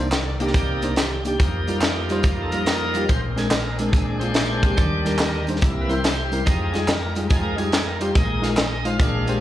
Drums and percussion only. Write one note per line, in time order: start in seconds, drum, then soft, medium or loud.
0.12 snare medium
0.12 clap medium
0.12 closed hi-hat medium
0.12 tambourine medium
0.40 closed hi-hat medium
0.40 tambourine soft
0.47 snare soft
0.54 kick loud
0.54 closed hi-hat medium
0.54 tambourine medium
0.82 closed hi-hat medium
0.82 tambourine soft
0.96 snare medium
0.96 clap medium
0.96 closed hi-hat medium
0.96 tambourine medium
1.25 closed hi-hat medium
1.25 tambourine medium
1.39 kick loud
1.39 closed hi-hat medium
1.39 tambourine medium
1.67 closed hi-hat medium
1.67 tambourine medium
1.81 snare loud
1.81 clap medium
1.81 closed hi-hat medium
1.81 tambourine medium
2.09 closed hi-hat medium
2.09 tambourine soft
2.23 kick loud
2.23 closed hi-hat medium
2.23 tambourine medium
2.52 closed hi-hat medium
2.52 tambourine soft
2.66 snare medium
2.66 clap medium
2.66 closed hi-hat medium
2.66 tambourine medium
2.94 closed hi-hat medium
2.94 tambourine soft
3.09 kick medium
3.09 closed hi-hat medium
3.09 tambourine medium
3.37 snare soft
3.37 closed hi-hat medium
3.37 tambourine medium
3.51 snare loud
3.51 clap medium
3.51 closed hi-hat medium
3.51 tambourine medium
3.79 closed hi-hat medium
3.79 tambourine soft
3.93 kick loud
3.93 closed hi-hat medium
3.93 tambourine medium
4.21 closed hi-hat medium
4.21 tambourine soft
4.34 snare medium
4.34 clap medium
4.34 closed hi-hat medium
4.34 tambourine medium
4.63 kick medium
4.63 closed hi-hat medium
4.63 tambourine soft
4.77 kick medium
4.77 closed hi-hat medium
4.77 tambourine medium
5.05 snare soft
5.05 closed hi-hat medium
5.05 tambourine medium
5.18 snare loud
5.18 clap loud
5.18 closed hi-hat medium
5.18 tambourine medium
5.47 closed hi-hat medium
5.47 tambourine medium
5.56 snare soft
5.61 kick loud
5.61 closed hi-hat medium
5.61 tambourine medium
5.89 closed hi-hat medium
5.89 tambourine soft
6.04 snare loud
6.04 clap medium
6.04 closed hi-hat medium
6.04 tambourine medium
6.32 closed hi-hat medium
6.32 tambourine medium
6.46 kick medium
6.46 closed hi-hat medium
6.46 tambourine medium
6.74 snare soft
6.74 closed hi-hat medium
6.74 tambourine medium
6.88 snare loud
6.88 clap medium
6.88 closed hi-hat medium
6.88 tambourine medium
7.15 closed hi-hat medium
7.15 tambourine soft
7.30 kick loud
7.30 closed hi-hat medium
7.30 tambourine medium
7.58 closed hi-hat medium
7.58 tambourine medium
7.72 snare loud
7.72 clap medium
7.72 closed hi-hat medium
7.72 tambourine medium
8.01 closed hi-hat medium
8.01 tambourine medium
8.15 kick loud
8.15 closed hi-hat medium
8.15 tambourine medium
8.43 snare soft
8.43 closed hi-hat medium
8.43 tambourine medium
8.57 snare loud
8.57 clap medium
8.57 closed hi-hat medium
8.57 tambourine loud
8.85 closed hi-hat medium
8.85 tambourine soft
8.99 kick loud
8.99 closed hi-hat medium
8.99 tambourine medium
9.27 closed hi-hat medium
9.27 tambourine medium